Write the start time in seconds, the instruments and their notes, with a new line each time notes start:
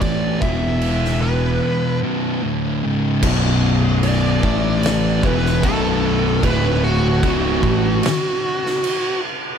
0.01 picked electric bass A1, distorted electric guitar A2 E3 A3, lead electric guitar D5, kick, crash
0.41 picked electric bass E1, distorted electric guitar E2 B2, lead electric guitar E5, kick
0.45 distorted electric guitar E3
0.82 crash
1.05 snare
1.22 lead electric guitar B4
2.02 distorted electric guitar B1 F#2 B2
2.43 distorted electric guitar D2 A2 D3
2.84 distorted electric guitar C#2 G#2 C#3
3.22 picked electric bass B0, distorted electric guitar B1 F#2 B2, kick, crash
4.03 lead electric guitar D5, crash
4.42 picked electric bass A1, distorted electric guitar A2 E3 A3, kick
4.83 snare, crash
5.23 picked electric bass E1, distorted electric guitar E2 B2 E3, lead electric guitar B4, kick
5.46 snare
5.63 picked electric bass B0, distorted electric guitar B1 F#2 B2, lead electric guitar A4, kick, crash
6.43 picked electric bass D1, distorted electric guitar D2 A2 D3, lead electric guitar B4, kick, crash
6.84 lead electric guitar F#4
7.23 picked electric bass C#1, distorted electric guitar C#2 G#2 C#3, kick, crash
7.62 picked electric bass A1, distorted electric guitar A2 E3 A3, kick
8.03 snare, crash
8.66 snare
8.84 crash